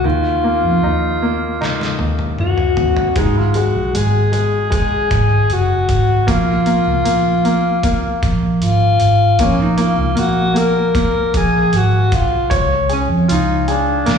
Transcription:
0.04 fingered electric bass D#2, grand piano D#3, alto saxophone F4
0.44 grand piano A#3
0.64 fingered electric bass F2
0.83 fingered electric bass D#2, grand piano D#4
1.22 grand piano A#3
1.61 grand piano D#4, snare
1.81 snare
1.99 fingered electric bass D#2, high tom
2.19 high tom
2.38 alto saxophone F#4, mid tom
2.58 mid tom
2.77 fingered electric bass D#2, floor tom
2.96 floor tom
3.16 fingered electric bass G#1, grand piano G#3, alto saxophone D#4, kick, closed hi-hat
3.38 alto saxophone F4
3.54 grand piano G#3, alto saxophone F#4, closed hi-hat
3.75 fingered electric bass B1
3.95 fingered electric bass G#1, grand piano G#3, alto saxophone G#4, closed hi-hat
4.32 grand piano G#3, closed hi-hat
4.70 grand piano G#3, kick, closed hi-hat
4.75 alto saxophone G#4
5.11 fingered electric bass G#1, kick, closed hi-hat
5.50 fingered electric bass F#1, alto saxophone F#4, closed hi-hat
5.89 fingered electric bass G#1, kick, closed hi-hat
6.27 fingered electric bass A#1, grand piano A#3, alto saxophone F4, kick, closed hi-hat
6.66 grand piano A#3, closed hi-hat
6.87 fingered electric bass C#2
7.04 fingered electric bass A#1, grand piano A#3, closed hi-hat
7.45 grand piano A#3, closed hi-hat
7.83 grand piano A#3, kick, closed hi-hat
8.23 fingered electric bass A#1, kick, closed hi-hat
8.62 fingered electric bass G#1, alto saxophone F4, closed hi-hat
9.00 fingered electric bass G#1, closed hi-hat
9.39 fingered electric bass A#1, grand piano A#3, alto saxophone C#4, kick, closed hi-hat
9.62 alto saxophone D#4
9.77 grand piano A#3, alto saxophone F4, closed hi-hat
9.98 fingered electric bass C#2
10.15 fingered electric bass A#1, grand piano A#3, alto saxophone F#4, closed hi-hat
10.54 grand piano A#3, alto saxophone A#4, closed hi-hat
10.95 grand piano A#3, kick, closed hi-hat
11.34 fingered electric bass A#1, alto saxophone G#4, kick, closed hi-hat
11.73 fingered electric bass G#1, alto saxophone F#4, closed hi-hat
12.12 fingered electric bass B1, alto saxophone F4, kick, closed hi-hat
12.50 fingered electric bass C#2, grand piano C#5, kick, closed hi-hat
12.89 alto saxophone C#4, grand piano G#4, closed hi-hat
13.09 fingered electric bass F2
13.28 fingered electric bass C#2, alto saxophone D#4, grand piano F4, closed hi-hat
13.68 alto saxophone D4, grand piano G#4, closed hi-hat
14.06 fingered electric bass A#1, grand piano A#3, snare, closed hi-hat

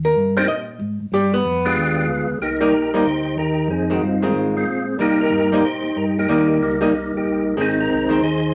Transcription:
Already playing: tonewheel organ D#2
0.05 hollow-body jazz guitar A#4
0.15 tonewheel organ G2
0.37 tonewheel organ A#3 C4 D4 D#4 G4, hollow-body jazz guitar C5
0.47 tonewheel organ A#2, hollow-body jazz guitar D#5
0.80 tonewheel organ G#2
1.00 tonewheel organ G#2
1.12 tonewheel organ G2, hollow-body jazz guitar G3 G4
1.34 hollow-body jazz guitar B3 B4
1.45 tonewheel organ F2
1.65 tonewheel organ G#3 B3 D4 F4 G4
1.76 tonewheel organ D#2
1.98 tonewheel organ G#3 B3 F4
2.08 tonewheel organ D2
2.28 tonewheel organ D2
2.40 tonewheel organ C2 A#3 D#4 G4
2.60 hollow-body jazz guitar G3 A#3 D#4, tonewheel organ D#4 G4 A#4
2.72 tonewheel organ A#1
2.94 hollow-body jazz guitar G3 A#3 D#4, tonewheel organ C5
3.04 tonewheel organ D2 D#4 G4 C5
3.36 tonewheel organ D#2 D#4 G4 A#4
3.68 tonewheel organ F2 C4 D#4 G#4
3.90 hollow-body jazz guitar D#3 G#3 C4, tonewheel organ F#4
4.01 tonewheel organ G2 F4
4.22 hollow-body jazz guitar D#3 G#3 C4, tonewheel organ G#3 C4 F4
4.33 tonewheel organ G#2
4.57 tonewheel organ G#3 C4 F4
4.66 tonewheel organ A#2
4.98 tonewheel organ C3 A#3 D#4 G4, hollow-body jazz guitar G3 A#3 D#4
5.21 tonewheel organ D#4 G4 A#4
5.30 tonewheel organ G2
5.52 hollow-body jazz guitar G3 A#3 D#4, tonewheel organ C5
5.63 tonewheel organ A#2 D#4 G4 C5
5.83 tonewheel organ A#2
5.96 tonewheel organ G2 A#4
6.19 tonewheel organ A#3 D#4 G4
6.28 tonewheel organ D#2, hollow-body jazz guitar G3 A#3 D#4
6.60 tonewheel organ C#2 G3 A#3 D#4
6.81 hollow-body jazz guitar G3 A#3 D#4
6.92 tonewheel organ C2 G3 A#3 D#4
7.14 tonewheel organ C2 A#3 D#4 G4
7.25 tonewheel organ A#1
7.57 tonewheel organ G#1 G#4, hollow-body jazz guitar D#3 G#3 C4
7.61 tonewheel organ C4 D#4
7.80 tonewheel organ D#4 A#4
7.89 tonewheel organ C2
8.09 hollow-body jazz guitar D#3 G#3 C4, tonewheel organ C5
8.21 tonewheel organ D#2 D#4 G#4 C5

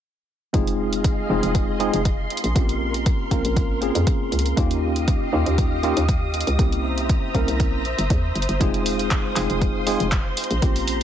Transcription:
0.53 fm bass F1, tine electric piano G#3 C4 D#4 F4 G#4, string machine G#4 D#5 F5 C6, kick, closed hi-hat
0.67 closed hi-hat
0.93 closed hi-hat
1.04 kick, closed hi-hat
1.29 fm bass F1, tine electric piano G#3 C4 D#4 F4 G#4
1.43 fm bass F1, closed hi-hat
1.55 kick, closed hi-hat
1.80 tine electric piano G#3 C4 D#4 F4 G#4, closed hi-hat
1.94 fm bass F1, closed hi-hat
2.05 kick, closed hi-hat
2.30 string machine A#4, closed hi-hat
2.37 closed hi-hat
2.44 fm bass A#1, closed hi-hat
2.55 fm bass A#1, tine electric piano A#3 C4 C#4 F4 G4, kick, closed hi-hat
2.69 closed hi-hat
2.94 closed hi-hat
3.06 kick, closed hi-hat
3.31 fm bass A#1, tine electric piano A#3 C4 C#4 F4 A#4, kick, closed hi-hat
3.45 fm bass A#1, closed hi-hat
3.56 kick, closed hi-hat
3.70 fm bass G#1
3.81 tine electric piano A#3 C4 C#4 F4 G#4, closed hi-hat
3.95 fm bass F2, closed hi-hat
4.07 kick, closed hi-hat
4.32 fm bass C#2, closed hi-hat
4.39 closed hi-hat
4.46 closed hi-hat
4.56 fm bass D#2, tine electric piano A#3 C#4 D#4 F4 G4, string machine G4 D#5 F5 D#6, kick, closed hi-hat
4.71 closed hi-hat
4.96 closed hi-hat
5.08 kick, closed hi-hat
5.32 fm bass D#2, tine electric piano A#3 C#4 D#4 F4 G4
5.46 fm bass D#2, closed hi-hat
5.58 kick, closed hi-hat
5.83 tine electric piano A#3 C#4 D#4 F4 G4, closed hi-hat
5.97 fm bass D#2, closed hi-hat
6.09 kick, closed hi-hat
6.34 closed hi-hat
6.40 closed hi-hat
6.47 fm bass C#2, closed hi-hat
6.58 fm bass C2, tine electric piano A#3 C4 C#4 E4 G4, string machine C5 E5 A#5, kick, closed hi-hat
6.72 closed hi-hat
6.98 closed hi-hat
7.09 kick, closed hi-hat
7.34 fm bass C2, tine electric piano A#3 C4 C#4 E4 A#4, kick, closed hi-hat
7.48 fm bass C2, closed hi-hat
7.60 kick, closed hi-hat
7.73 fm bass A#1
7.85 closed hi-hat
7.99 fm bass G1, closed hi-hat
8.10 fm bass E2, kick, closed hi-hat
8.35 fm bass G1, closed hi-hat
8.42 closed hi-hat
8.49 fm bass G1, closed hi-hat
8.60 fm bass F1, tine electric piano G#3 C4 D#4 F4 G#4, string machine F5 C6 D#6, kick, closed hi-hat
8.74 closed hi-hat
8.86 open hi-hat
8.99 closed hi-hat
9.11 kick, clap, closed hi-hat
9.36 fm bass F1, tine electric piano G#3 C4 D#4 F4 G#4, clap, open hi-hat
9.50 fm bass F1, closed hi-hat
9.61 kick, closed hi-hat
9.86 tine electric piano G#3 C4 D#4 F4 G#4, open hi-hat
10.00 fm bass F1, closed hi-hat
10.12 kick, clap, closed hi-hat
10.37 string machine A#5, open hi-hat
10.44 closed hi-hat
10.51 fm bass A#1, closed hi-hat
10.61 fm bass A#1, tine electric piano A#3 C4 C#4 F4 G4, kick, closed hi-hat
10.76 open hi-hat
10.88 open hi-hat

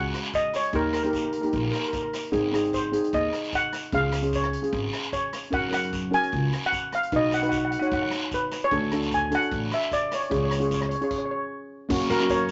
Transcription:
Already playing: steel pan G#3 C#4 F#4 F#5
0.14 cross-stick, closed hi-hat
0.24 closed hi-hat
0.33 steel pan D#5, kick, closed hi-hat, short guiro
0.53 steel pan C#5, cross-stick, closed hi-hat, short guiro
0.63 closed hi-hat
0.73 upright bass D#2, steel pan A#3 D#4 G4 A#4, kick, closed hi-hat, long guiro
0.93 steel pan A#4, cross-stick, closed hi-hat, short guiro
1.03 steel pan A#3 D#4 G4 A#4, closed hi-hat
1.11 steel pan A#4, kick, closed hi-hat
1.15 steel pan A#4, short guiro
1.25 steel pan A#4
1.32 steel pan A#4, closed hi-hat
1.42 steel pan A#3 D#4 G4 A#4, closed hi-hat
1.49 steel pan A#4, closed hi-hat
1.53 upright bass A#1, steel pan A#4, kick, long guiro
1.65 steel pan A#4
1.71 steel pan A#4, cross-stick, closed hi-hat
1.80 steel pan A#4, closed hi-hat
1.88 steel pan A#4
1.93 steel pan A#4, kick, closed hi-hat, short guiro
2.03 steel pan A#4
2.13 cross-stick, closed hi-hat, short guiro
2.24 closed hi-hat
2.32 upright bass G#1, steel pan C4 D#4 G#4, kick, closed hi-hat, long guiro
2.52 steel pan C4 D#4 G#4, cross-stick, closed hi-hat, short guiro
2.64 closed hi-hat
2.73 steel pan C5, kick, closed hi-hat, short guiro
2.92 steel pan C4 D#4 G#4, closed hi-hat
3.04 closed hi-hat
3.13 upright bass D#2, steel pan D#5, kick, closed hi-hat, long guiro
3.33 cross-stick, closed hi-hat
3.43 closed hi-hat
3.52 steel pan F#5, kick, closed hi-hat, short guiro
3.73 cross-stick, closed hi-hat, short guiro
3.83 closed hi-hat
3.92 upright bass C#2, steel pan C#4 F4 G#4 F5, kick, closed hi-hat, long guiro
4.12 cross-stick, closed hi-hat, short guiro
4.22 steel pan C#4 F4 G#4, closed hi-hat
4.33 steel pan C#5, kick, closed hi-hat, short guiro
4.43 cross-stick
4.53 closed hi-hat
4.62 steel pan C#4 F4 G#4, closed hi-hat
4.73 upright bass G#1, kick, closed hi-hat, long guiro
4.93 cross-stick, closed hi-hat
5.03 closed hi-hat
5.13 steel pan C#5, kick, closed hi-hat, short guiro
5.33 cross-stick, closed hi-hat, short guiro
5.43 closed hi-hat
5.50 upright bass F#2, steel pan C#4 F#4 A#4 F#5, kick, closed hi-hat, long guiro
5.70 steel pan C#4 F#4 A#4, cross-stick, closed hi-hat, short guiro
5.74 steel pan F#5
5.83 closed hi-hat
5.93 kick, closed hi-hat, short guiro
6.11 steel pan C#4 F#4 A#4 G#5, closed hi-hat
6.23 closed hi-hat
6.32 upright bass C#2, kick, closed hi-hat, long guiro
6.53 cross-stick, closed hi-hat
6.63 steel pan F#5, closed hi-hat
6.72 kick, closed hi-hat, short guiro
6.92 steel pan F5, cross-stick, closed hi-hat
7.03 closed hi-hat
7.12 upright bass B1, steel pan D#4 F#4 B4, kick, closed hi-hat, long guiro
7.16 steel pan D#5
7.32 steel pan F#5, cross-stick, closed hi-hat, short guiro
7.42 steel pan D#4 F#4 B4 F#5, closed hi-hat
7.49 steel pan F#5, kick, closed hi-hat, short guiro
7.58 steel pan F#5
7.65 steel pan F#5
7.71 steel pan F#5, closed hi-hat
7.79 steel pan D#4 F#4 C#5 F#5, closed hi-hat
7.87 steel pan F#5
7.92 upright bass F#2, steel pan F#5, kick, closed hi-hat, long guiro
8.02 steel pan F#5
8.11 cross-stick, closed hi-hat
8.21 closed hi-hat
8.31 steel pan B4, kick, closed hi-hat, short guiro
8.52 cross-stick, closed hi-hat, short guiro
8.62 steel pan C#5, closed hi-hat
8.71 upright bass D2, steel pan D4 F#4 A4, kick, closed hi-hat, long guiro
8.91 steel pan D4 F#4 A4, cross-stick, closed hi-hat
9.02 closed hi-hat
9.11 steel pan G#5, kick, closed hi-hat, short guiro
9.31 steel pan D4 F#4 A4, closed hi-hat
9.35 steel pan F#5
9.42 closed hi-hat
9.51 upright bass A1, kick, closed hi-hat, long guiro
9.71 steel pan E5, cross-stick, closed hi-hat
9.82 closed hi-hat
9.91 steel pan D5, kick, closed hi-hat, short guiro
10.11 steel pan C#5, cross-stick, closed hi-hat, short guiro
10.22 steel pan C#5, closed hi-hat
10.30 upright bass C#2, steel pan C#4 F4 G#4 C#5, kick, closed hi-hat, long guiro
10.37 steel pan C#5
10.45 steel pan C#5
10.51 steel pan C#5, cross-stick, closed hi-hat, short guiro
10.59 steel pan C#4 F4 G#4 C#5, closed hi-hat
10.67 steel pan C#5, kick, closed hi-hat, short guiro
10.74 steel pan C#5
10.81 steel pan C#5, cross-stick
10.89 steel pan C#5, closed hi-hat
10.95 steel pan C#5
11.01 steel pan C#4 F4 G#4 C#5, closed hi-hat
11.11 steel pan C#5, kick, crash
11.18 steel pan C#5
11.25 steel pan C#5
11.31 steel pan C#5
11.89 upright bass F#2, steel pan A#3 C#4 F#4, kick, crash, long guiro
12.10 upright bass F#2, steel pan F#4 A#4, closed hi-hat
12.20 steel pan A#3 C#4 F#4, cross-stick, closed hi-hat
12.29 steel pan A#4 C#5, kick, closed hi-hat, short guiro

